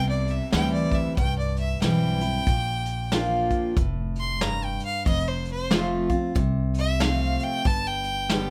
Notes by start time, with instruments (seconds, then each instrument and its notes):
Already playing: upright bass C2, steel-string acoustic guitar C3
0.09 fiddle D5
0.27 fiddle E5, closed hi-hat
0.52 upright bass D2, steel-string acoustic guitar E3 G3 C4 E4, fiddle G5, snare, closed hi-hat
0.73 fiddle D5
0.92 fiddle E5, kick, closed hi-hat
1.17 upright bass C2, steel-string acoustic guitar G2, fiddle G5, kick, closed hi-hat
1.39 fiddle D5
1.57 fiddle E5, closed hi-hat
1.82 upright bass B1, steel-string acoustic guitar E3 G3 C4 E4, fiddle G5, snare, closed hi-hat
2.21 steel-string acoustic guitar C4 E4, closed hi-hat
2.47 upright bass A#1, steel-string acoustic guitar A#2, kick, closed hi-hat
2.86 closed hi-hat
3.12 steel-string acoustic guitar F3 A#3 D4 F4, snare, closed hi-hat
3.50 kick, closed hi-hat
3.76 upright bass F1, steel-string acoustic guitar A2, kick, closed hi-hat
4.16 closed hi-hat
4.20 fiddle C6
4.41 steel-string acoustic guitar G2, fiddle A#5, snare, closed hi-hat
4.64 fiddle G5
4.80 closed hi-hat
4.85 fiddle F5
5.06 upright bass F1, steel-string acoustic guitar F2, fiddle D#5, kick, closed hi-hat
5.28 fiddle C5
5.45 closed hi-hat
5.51 fiddle C5
5.71 steel-string acoustic guitar F3 A3 C4 F4, snare, closed hi-hat
6.09 steel-string acoustic guitar C4 F4, kick, closed hi-hat
6.35 upright bass C2, steel-string acoustic guitar C3, kick, closed hi-hat
6.74 closed hi-hat
6.79 fiddle E5
7.00 steel-string acoustic guitar F3 A3 C4 F4, fiddle F5, snare, closed hi-hat
7.40 closed hi-hat
7.44 fiddle G5
7.65 upright bass G1, steel-string acoustic guitar G2, fiddle A5, kick, closed hi-hat
7.87 fiddle G5
8.04 closed hi-hat
8.29 steel-string acoustic guitar D3 G3 B3 G4, snare, closed hi-hat